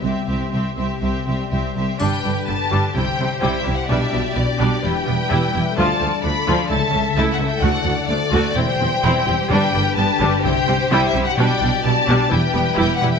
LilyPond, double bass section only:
\new Staff \with { instrumentName = "Double bass section" } { \clef bass \time 4/4 \key c \major \tempo 4 = 128 c,8 c,8 c,8 c,8 c,8 c,8 c,8 c,8 | \key g \major g,,8 g,,8 g,,8 g,,8 c,8 c,8 c,8 c,8 | b,,8 b,,8 b,,8 b,,8 e,,8 e,,8 e,,8 e,,8 | d,8 d,8 d,8 d,8 cis,8 cis,8 cis,8 cis,8 |
d,8 d,8 d,8 d,8 e,,8 e,,8 e,,8 e,,8 | g,,8 g,,8 g,,8 g,,8 c,8 c,8 c,8 c,8 | b,,8 b,,8 b,,8 b,,8 e,,8 e,,8 e,,8 e,,8 | }